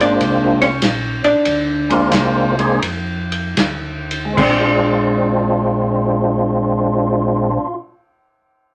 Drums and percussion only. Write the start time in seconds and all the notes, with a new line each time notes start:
0.00 ride
0.21 kick, ride
0.61 ride
0.82 kick, snare, hi-hat pedal, ride
1.24 ride
1.45 kick, ride
1.90 ride
2.11 kick, snare, hi-hat pedal, ride
2.59 ride
2.82 kick, ride
3.32 ride
3.57 kick, snare, hi-hat pedal, ride
4.11 ride
4.38 kick, crash